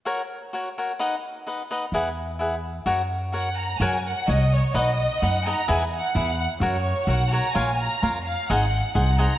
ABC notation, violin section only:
X:1
M:2/4
L:1/8
Q:1/4=128
K:F#
V:1 name="Violin section"
z4 | z4 | z4 | z2 f a |
g f d c | d2 f a | g f2 f | c2 f a |
g a2 e | f2 f a |]